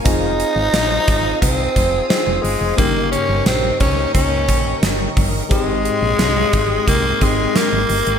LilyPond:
<<
  \new Staff \with { instrumentName = "String machine" } { \time 4/4 \key aes \major \tempo 4 = 88 << { <c'' aes'' ees'''>1 | <bes' g'' des'''>1 | <aes g'' c'''>1 | } \\ { f''1 | ees''1~ | ees''1 | } >> }
  \new Staff \with { instrumentName = "FM electric piano" } { \time 4/4 \key aes \major <c' ees' f' aes'>2. <c' ees' f' aes'>4 | <des bes ees' g'>1 | <aes c' ees' g'>2~ <aes c' ees' g'>8 <aes c' ees' g'>4. | }
  \new Staff \with { instrumentName = "FM electric piano" } { \clef bass \time 4/4 \key aes \major r1 | g,4. r2 r8 | aes,4. r2 r8 | }
  \new Staff \with { instrumentName = "Tenor saxophone" } { \time 4/4 \key aes \major ees'2 c'4 c'8 aes8 | bes8 des'8 c'8 des'8 des'4 r4 | aes2 bes8 aes8 bes4 | }
  \new Staff \with { instrumentName = "FM bass" } { \clef bass \time 4/4 \key aes \major f,,8. aes,,16 bes,,8 aes,,8 c,8 f,,8 r16 f,,16 g,,16 f,,16 | g,,8. g,,16 bes,,8 des,8 des,8 bes,,8 g,,8 g,,8 | aes,,8. bes,,16 c,8 aes,,8 c,8 aes,,8 r16 aes,,16 g,,16 aes,,16 | }
  \new DrumStaff \with { instrumentName = "Drums" } \drummode { \time 4/4 <hh bd>8 hh8 <hh sn>8 <hh bd>8 <hh bd>8 <hh bd>8 <hh sn>8 hho8 | <hh bd>8 hh8 <hh sn>8 <hh bd>8 <hh bd>8 <hh bd>8 <hh sn>8 <hho bd>8 | <hh bd>8 hh8 <hh sn>8 <hh bd>8 <hh bd>8 <hh bd>8 <hh sn>8 hho16 hh16 | }
>>